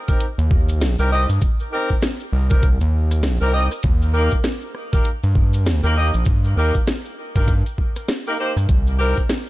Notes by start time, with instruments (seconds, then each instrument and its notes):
0.08 horn section C4 D#4 G4 A#4, kick, closed hi-hat, cabasa
0.20 closed hi-hat, cabasa
0.38 analog synth bass D#2, closed hi-hat, cabasa
0.51 kick
0.69 closed hi-hat, cabasa
0.81 snare, closed hi-hat, cabasa
0.99 analog synth bass C2, horn section C4 D#4 G4 A#4, cabasa
1.11 horn section C4 D#4 G4 D#5
1.29 analog synth bass G2, cabasa
1.41 kick, closed hi-hat, cabasa
1.60 cabasa
1.72 horn section C4 D#4 G4 A#4
1.89 kick, cabasa
2.02 snare, closed hi-hat, cabasa
2.20 cabasa
2.33 analog synth bass C2
2.50 horn section C4 D#4 G4 A#4, kick, closed hi-hat, cabasa
2.62 kick, closed hi-hat, cabasa
2.81 analog synth bass D#2, closed hi-hat, cabasa
3.11 cross-stick, closed hi-hat, cabasa
3.23 snare, closed hi-hat, cabasa
3.41 analog synth bass C2, horn section C4 D#4 G4 A#4, cabasa
3.53 horn section C4 D#4 G4 D#5
3.71 cross-stick, cabasa
3.83 analog synth bass D#2, kick, closed hi-hat, cabasa
4.02 cabasa
4.14 horn section A#3 D#4 G4 A#4
4.32 kick, cabasa
4.44 snare, closed hi-hat, cabasa
4.61 cabasa
4.75 cross-stick
4.93 horn section A#3 D#4 G4 A#4, kick, closed hi-hat, cabasa
5.04 closed hi-hat, cabasa
5.23 analog synth bass G2, closed hi-hat, cabasa
5.35 kick
5.53 closed hi-hat, cabasa
5.66 snare, closed hi-hat, cabasa
5.83 analog synth bass D#2, horn section A#3 D#4 G4 A#4, cabasa
5.96 horn section A#3 D#4 G4 D#5
6.14 analog synth bass A#1, cabasa
6.25 analog synth bass G2, kick, closed hi-hat, cabasa
6.45 cabasa
6.56 analog synth bass D#2, horn section A#3 D#4 G4 A#4
6.74 kick, cabasa
6.87 snare, closed hi-hat, cabasa
7.05 cabasa
7.35 analog synth bass G2, horn section A#3 D#4 G4 A#4, kick, closed hi-hat, cabasa
7.48 kick, closed hi-hat, cabasa
7.66 closed hi-hat, cabasa
7.78 kick
7.96 cross-stick, closed hi-hat, cabasa
8.09 snare, closed hi-hat, cabasa
8.26 horn section A#3 D#4 G4 A#4, cabasa
8.38 horn section A#3 D#4 G4 C5
8.57 analog synth bass G2, cross-stick, cabasa
8.69 analog synth bass C2, kick, closed hi-hat, cabasa
8.87 cabasa
8.99 horn section C4 D#4 G4 A#4
9.17 kick, cabasa
9.29 snare, closed hi-hat, cabasa